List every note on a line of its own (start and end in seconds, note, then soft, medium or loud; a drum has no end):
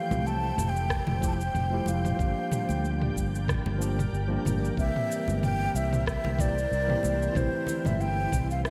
0.00 1.20 E3 medium
0.00 1.17 F3 medium
0.00 4.74 G3 medium
0.00 1.19 A3 medium
0.00 2.15 A3 medium
0.00 1.21 G4 medium
0.00 2.17 C5 medium
0.00 0.28 F5 medium
0.00 7.32 G5 medium
0.00 8.70 G5 medium
0.11 0.51 C2 medium
0.11 mid tom medium
0.11 high conga medium
0.11 cabasa soft
0.27 0.71 A5 loud
0.27 cabasa soft
0.58 0.99 F1 medium
0.58 mid tom medium
0.58 cabasa medium
0.69 1.27 G5 loud
0.76 cabasa soft
0.90 kick loud
0.90 cross-stick medium
0.90 cabasa soft
1.07 1.48 F1 medium
1.07 mid tom medium
1.07 high conga medium
1.07 low conga medium
1.21 1.38 F3 medium
1.21 1.39 A3 medium
1.21 1.39 E4 medium
1.21 1.40 G4 medium
1.21 kick loud
1.21 cabasa medium
1.27 1.35 A5 medium
1.34 1.90 G5 loud
1.41 cabasa soft
1.54 1.78 F1 loud
1.54 mid tom medium
1.54 cabasa soft
1.71 2.14 F3 medium
1.71 2.16 A3 medium
1.71 2.16 E4 medium
1.71 2.17 G4 medium
1.86 2.11 F1 medium
1.86 3.17 F5 medium
1.86 high conga medium
1.86 cabasa medium
2.05 mid tom medium
2.05 cabasa soft
2.16 2.32 G1 medium
2.16 3.75 F3 medium
2.16 3.76 A#3 medium
2.16 kick loud
2.20 3.77 D4 medium
2.20 3.79 G4 medium
2.20 4.75 A#4 medium
2.20 4.75 D5 medium
2.20 cabasa soft
2.51 mid tom medium
2.51 low conga medium
2.51 cabasa medium
2.69 3.09 D2 medium
2.69 high conga medium
2.69 cabasa soft
2.85 cabasa soft
3.02 mid tom medium
3.16 3.58 G1 loud
3.16 kick medium
3.16 cabasa medium
3.35 cabasa soft
3.48 kick loud
3.48 cross-stick medium
3.48 mid tom medium
3.48 cabasa soft
3.66 4.06 G1 medium
3.66 high conga medium
3.66 low conga medium
3.78 3.96 F3 medium
3.78 3.97 A#3 medium
3.78 3.97 D4 medium
3.78 3.98 G4 loud
3.78 cabasa medium
3.99 mid tom medium
3.99 cabasa soft
4.13 4.36 G1 loud
4.13 cabasa soft
4.28 4.73 F3 medium
4.28 4.73 A#3 medium
4.28 4.74 D4 medium
4.28 4.74 G4 medium
4.45 4.69 G1 medium
4.45 mid tom medium
4.45 high conga medium
4.45 cabasa medium
4.65 cabasa soft
4.75 4.90 C2 loud
4.75 6.34 E3 medium
4.75 6.35 A#3 medium
4.75 8.70 E4 medium
4.75 7.33 A#4 medium
4.75 7.33 C5 medium
4.75 kick loud
4.79 6.36 C4 medium
4.79 6.37 G4 medium
4.79 5.39 E5 loud
4.79 cabasa soft
4.96 mid tom medium
5.12 cabasa medium
5.28 5.67 G1 medium
5.28 high conga medium
5.28 cabasa soft
5.43 5.77 G5 loud
5.43 mid tom medium
5.43 cabasa soft
5.74 6.16 C2 loud
5.74 6.07 E5 loud
5.74 cabasa medium
5.93 mid tom medium
5.93 cabasa soft
6.06 6.42 E5 loud
6.06 kick loud
6.06 cross-stick medium
6.06 cabasa soft
6.24 6.64 C2 medium
6.24 high conga medium
6.24 low conga medium
6.37 6.54 E3 medium
6.37 6.55 A#3 medium
6.37 6.56 C4 medium
6.37 6.56 G4 medium
6.37 7.38 D5 loud
6.37 kick loud
6.37 mid tom medium
6.37 cabasa medium
6.58 cabasa soft
6.71 6.95 C2 loud
6.71 cabasa soft
6.87 7.31 E3 medium
6.87 7.32 A#3 medium
6.87 7.32 C4 medium
6.87 7.33 G4 loud
6.87 mid tom medium
7.03 7.27 C2 medium
7.03 high conga medium
7.03 cabasa medium
7.22 cabasa soft
7.32 7.48 C2 loud
7.32 8.61 E3 medium
7.32 8.62 A3 medium
7.32 8.70 C5 medium
7.32 8.70 G5 medium
7.32 kick loud
7.32 mid tom medium
7.36 8.63 C4 medium
7.36 8.65 G4 medium
7.36 7.88 C5 loud
7.36 cabasa soft
7.67 low conga medium
7.67 cabasa medium
7.85 8.25 G1 medium
7.85 8.02 E5 medium
7.85 mid tom medium
7.85 high conga medium
7.85 cabasa soft
8.01 8.50 G5 loud
8.01 cabasa soft
8.32 8.64 C2 medium
8.32 kick medium
8.32 mid tom medium
8.32 cabasa medium
8.51 8.64 F5 medium
8.51 cabasa soft
8.65 8.70 E5 loud
8.65 cross-stick medium
8.65 cabasa soft